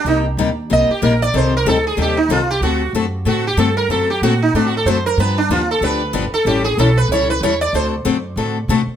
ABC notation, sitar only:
X:1
M:4/4
L:1/8
Q:"Swing" 1/4=187
K:Dphr
V:1 name="Sitar"
E z3 e G B d | c B A _A G E F G | ^F2 z2 F G A B | A G ^F E (3D F A c B |
=B D F A B3 A | G _A =A =B ^c B c d | c z6 z |]